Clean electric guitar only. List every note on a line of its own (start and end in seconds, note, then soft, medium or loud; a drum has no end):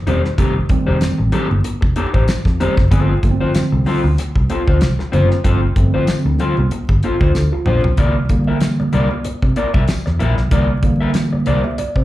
0.07 0.22 D#4 medium
0.07 0.22 G4 medium
0.07 0.22 C5 loud
0.24 muted clean electric guitar stroke medium
0.38 0.53 D#4 medium
0.38 0.53 G4 loud
0.38 0.54 A4 medium
0.69 muted clean electric guitar stroke soft
0.86 0.97 D#4 medium
0.86 0.97 G4 medium
0.86 0.96 C5 medium
1.18 muted clean electric guitar stroke soft
1.32 1.48 D#4 medium
1.32 1.48 G4 medium
1.32 1.48 A4 loud
1.50 muted clean electric guitar stroke soft
1.64 muted clean electric guitar stroke soft
1.81 muted clean electric guitar stroke medium
1.96 2.08 D#4 medium
1.96 2.08 G4 medium
1.96 2.09 A4 medium
2.14 2.24 D#4 medium
2.14 2.23 G4 medium
2.14 2.23 C5 medium
2.46 muted clean electric guitar stroke medium
2.60 2.75 D#4 medium
2.60 2.75 G4 loud
2.60 2.75 C5 loud
2.77 muted clean electric guitar stroke soft
2.91 3.12 C4 medium
2.91 3.13 F4 medium
2.91 3.13 A4 medium
3.23 muted clean electric guitar stroke soft
3.40 3.50 C4 medium
3.40 3.50 F4 medium
3.40 3.50 C5 medium
3.72 muted clean electric guitar stroke soft
3.86 4.01 C4 medium
3.86 4.02 F4 medium
3.86 4.02 A4 medium
4.04 muted clean electric guitar stroke soft
4.19 muted clean electric guitar stroke soft
4.36 muted clean electric guitar stroke soft
4.50 4.62 C4 medium
4.50 4.62 F4 medium
4.50 4.62 A4 medium
4.67 4.77 C4 medium
4.67 4.77 F4 medium
4.67 4.77 C5 medium
4.99 muted clean electric guitar stroke medium
5.12 5.28 C4 loud
5.12 5.28 F4 medium
5.12 5.28 C5 loud
5.30 muted clean electric guitar stroke medium
5.44 5.59 C4 medium
5.44 5.60 F4 medium
5.44 5.60 A4 medium
5.76 muted clean electric guitar stroke soft
5.94 6.04 C4 medium
5.94 6.03 F4 medium
5.94 6.03 C5 medium
6.26 muted clean electric guitar stroke soft
6.40 6.55 C4 medium
6.40 6.55 F4 medium
6.40 6.55 A4 medium
6.58 muted clean electric guitar stroke soft
6.72 muted clean electric guitar stroke soft
6.90 muted clean electric guitar stroke soft
7.04 7.15 C4 medium
7.04 7.15 F4 medium
7.04 7.16 A4 medium
7.21 7.31 C4 medium
7.21 7.31 F4 medium
7.21 7.30 C5 medium
7.53 muted clean electric guitar stroke soft
7.67 7.81 C4 medium
7.67 7.82 F4 medium
7.67 7.82 C5 medium
7.84 muted clean electric guitar stroke soft
7.98 8.13 E4 medium
7.98 8.13 A#4 medium
7.98 8.13 D5 medium
8.30 muted clean electric guitar stroke soft
8.47 8.57 E4 soft
8.47 8.57 A#4 medium
8.47 8.57 E5 medium
8.80 muted clean electric guitar stroke soft
8.93 9.08 E4 medium
8.93 9.08 A#4 medium
8.93 9.09 D5 medium
9.11 muted clean electric guitar stroke soft
9.25 muted clean electric guitar stroke soft
9.43 muted clean electric guitar stroke soft
9.56 9.68 E4 soft
9.56 9.68 A#4 medium
9.56 9.69 D5 medium
9.74 9.84 E4 medium
9.74 9.84 A#4 medium
9.74 9.83 E5 medium
10.06 muted clean electric guitar stroke soft
10.19 10.35 E4 medium
10.19 10.35 A#4 medium
10.19 10.35 E5 loud
10.37 muted clean electric guitar stroke soft
10.51 10.66 E4 medium
10.51 10.67 A#4 medium
10.51 10.67 D5 medium
10.84 muted clean electric guitar stroke soft
11.01 11.11 E4 medium
11.01 11.10 A#4 medium
11.01 11.10 E5 medium
11.33 muted clean electric guitar stroke medium
11.46 11.62 E4 medium
11.46 11.62 A#4 medium
11.46 11.62 D5 medium
11.64 muted clean electric guitar stroke soft
11.78 muted clean electric guitar stroke soft
11.96 muted clean electric guitar stroke medium